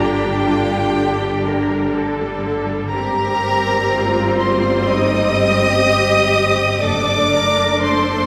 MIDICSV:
0, 0, Header, 1, 6, 480
1, 0, Start_track
1, 0, Key_signature, -2, "minor"
1, 0, Tempo, 961538
1, 958, Tempo, 991736
1, 1436, Time_signature, 4, 2, 24, 8
1, 1918, Tempo, 970874
1, 3358, Tempo, 1013514
1, 4043, End_track
2, 0, Start_track
2, 0, Title_t, "Violin section"
2, 0, Program_c, 0, 48
2, 0, Note_on_c, 0, 79, 92
2, 957, Note_off_c, 0, 79, 0
2, 1437, Note_on_c, 0, 82, 108
2, 2140, Note_off_c, 0, 82, 0
2, 2167, Note_on_c, 0, 84, 80
2, 2399, Note_on_c, 0, 87, 109
2, 2402, Note_off_c, 0, 84, 0
2, 3359, Note_off_c, 0, 87, 0
2, 3364, Note_on_c, 0, 86, 111
2, 3836, Note_off_c, 0, 86, 0
2, 3838, Note_on_c, 0, 84, 109
2, 4043, Note_off_c, 0, 84, 0
2, 4043, End_track
3, 0, Start_track
3, 0, Title_t, "Violin section"
3, 0, Program_c, 1, 48
3, 0, Note_on_c, 1, 67, 72
3, 957, Note_off_c, 1, 67, 0
3, 1438, Note_on_c, 1, 70, 83
3, 2141, Note_off_c, 1, 70, 0
3, 2163, Note_on_c, 1, 72, 75
3, 2400, Note_off_c, 1, 72, 0
3, 2400, Note_on_c, 1, 75, 101
3, 3360, Note_off_c, 1, 75, 0
3, 3362, Note_on_c, 1, 74, 81
3, 3835, Note_off_c, 1, 74, 0
3, 3836, Note_on_c, 1, 72, 89
3, 4043, Note_off_c, 1, 72, 0
3, 4043, End_track
4, 0, Start_track
4, 0, Title_t, "Cello section"
4, 0, Program_c, 2, 48
4, 1, Note_on_c, 2, 67, 66
4, 238, Note_off_c, 2, 67, 0
4, 239, Note_on_c, 2, 65, 67
4, 478, Note_off_c, 2, 65, 0
4, 479, Note_on_c, 2, 67, 70
4, 718, Note_off_c, 2, 67, 0
4, 721, Note_on_c, 2, 70, 68
4, 959, Note_off_c, 2, 70, 0
4, 961, Note_on_c, 2, 69, 67
4, 1437, Note_off_c, 2, 69, 0
4, 1439, Note_on_c, 2, 67, 74
4, 1910, Note_off_c, 2, 67, 0
4, 1924, Note_on_c, 2, 65, 69
4, 2400, Note_off_c, 2, 65, 0
4, 2401, Note_on_c, 2, 63, 67
4, 2639, Note_off_c, 2, 63, 0
4, 2640, Note_on_c, 2, 67, 78
4, 3360, Note_off_c, 2, 67, 0
4, 3361, Note_on_c, 2, 69, 77
4, 3592, Note_off_c, 2, 69, 0
4, 3595, Note_on_c, 2, 70, 66
4, 3830, Note_off_c, 2, 70, 0
4, 3837, Note_on_c, 2, 69, 73
4, 4043, Note_off_c, 2, 69, 0
4, 4043, End_track
5, 0, Start_track
5, 0, Title_t, "Viola section"
5, 0, Program_c, 3, 48
5, 0, Note_on_c, 3, 62, 67
5, 2, Note_on_c, 3, 50, 60
5, 117, Note_on_c, 3, 55, 61
5, 119, Note_off_c, 3, 50, 0
5, 236, Note_off_c, 3, 55, 0
5, 238, Note_on_c, 3, 50, 60
5, 357, Note_off_c, 3, 50, 0
5, 360, Note_on_c, 3, 55, 56
5, 477, Note_on_c, 3, 50, 63
5, 479, Note_off_c, 3, 55, 0
5, 589, Note_off_c, 3, 50, 0
5, 596, Note_on_c, 3, 55, 58
5, 716, Note_off_c, 3, 55, 0
5, 719, Note_on_c, 3, 50, 63
5, 838, Note_off_c, 3, 50, 0
5, 842, Note_on_c, 3, 55, 59
5, 960, Note_off_c, 3, 55, 0
5, 963, Note_on_c, 3, 50, 61
5, 1078, Note_off_c, 3, 50, 0
5, 1083, Note_on_c, 3, 55, 60
5, 1199, Note_off_c, 3, 55, 0
5, 1204, Note_on_c, 3, 50, 63
5, 1320, Note_off_c, 3, 50, 0
5, 1320, Note_on_c, 3, 55, 58
5, 1414, Note_off_c, 3, 62, 0
5, 1433, Note_off_c, 3, 55, 0
5, 1439, Note_on_c, 3, 55, 73
5, 1439, Note_on_c, 3, 60, 73
5, 3341, Note_off_c, 3, 55, 0
5, 3341, Note_off_c, 3, 60, 0
5, 3357, Note_on_c, 3, 57, 71
5, 3359, Note_on_c, 3, 62, 76
5, 4043, Note_off_c, 3, 57, 0
5, 4043, Note_off_c, 3, 62, 0
5, 4043, End_track
6, 0, Start_track
6, 0, Title_t, "Double bass section"
6, 0, Program_c, 4, 48
6, 0, Note_on_c, 4, 31, 73
6, 1417, Note_off_c, 4, 31, 0
6, 1440, Note_on_c, 4, 31, 76
6, 3341, Note_off_c, 4, 31, 0
6, 3363, Note_on_c, 4, 30, 76
6, 4043, Note_off_c, 4, 30, 0
6, 4043, End_track
0, 0, End_of_file